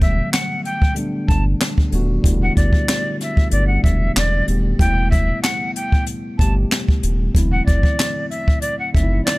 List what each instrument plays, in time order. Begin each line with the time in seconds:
Already playing: analog synth bass E1, tine electric piano D3 F#3 G3 A3 B3
0.01 flute E5, kick, closed hi-hat
0.32 flute F#5, snare, clap, closed hi-hat
0.65 flute G5, closed hi-hat
0.82 kick
0.94 tine electric piano D3 G3 A3 B3, closed hi-hat
0.99 tine electric piano D4
1.28 analog synth bass G1, flute A5, kick, closed hi-hat
1.61 snare, clap, closed hi-hat
1.78 kick
1.91 analog synth bass D#1, tine electric piano D3 G3 A3 B3 F#4, closed hi-hat
2.22 analog synth bass E1, tine electric piano D3 G3 A3 B3, kick, closed hi-hat
2.26 tine electric piano E4
2.42 flute F#5
2.57 analog synth bass G1, flute D5, kick, closed hi-hat
2.73 kick
2.89 snare, clap, closed hi-hat
3.21 flute E5, snare, closed hi-hat
3.37 kick
3.51 analog synth bass G1, tine electric piano D3 F#3 A3 B3, flute D5, closed hi-hat
3.55 tine electric piano G3 D4
3.67 flute F#5
3.83 analog synth bass E1, flute E5, kick, closed hi-hat
4.16 analog synth bass E1, flute D5, snare, clap, closed hi-hat
4.46 analog synth bass D#1, tine electric piano D3 G3 A3 B3, closed hi-hat
4.50 tine electric piano G4
4.78 analog synth bass E1, tine electric piano E2 C3 G3 A3 B3, flute G5, kick, closed hi-hat
4.82 tine electric piano E4
5.11 flute E5, kick, closed hi-hat
5.42 flute F#5, snare, clap, closed hi-hat
5.76 flute G5, closed hi-hat
5.92 kick
6.06 closed hi-hat
6.38 analog synth bass G1, tine electric piano E2 C3 G3 A3 B3, flute A5, kick, closed hi-hat
6.42 tine electric piano G4
6.72 snare, clap, closed hi-hat
6.88 kick
7.03 analog synth bass D#1, closed hi-hat
7.33 analog synth bass E1, tine electric piano E2 D3 F#3 A3 C4, kick, closed hi-hat
7.37 tine electric piano E4
7.52 flute F#5
7.66 analog synth bass F#1, flute D5, kick, closed hi-hat
7.83 kick
8.00 snare, clap, closed hi-hat
8.30 flute E5, closed hi-hat
8.48 kick
8.61 flute D5, closed hi-hat
8.79 flute F#5
8.92 analog synth bass F#1, tine electric piano E2 D3 F#3 A3 C4, flute E5, kick
8.96 tine electric piano D#4, closed hi-hat
9.03 tine electric piano E4
9.24 flute D5, snare, clap
9.29 closed hi-hat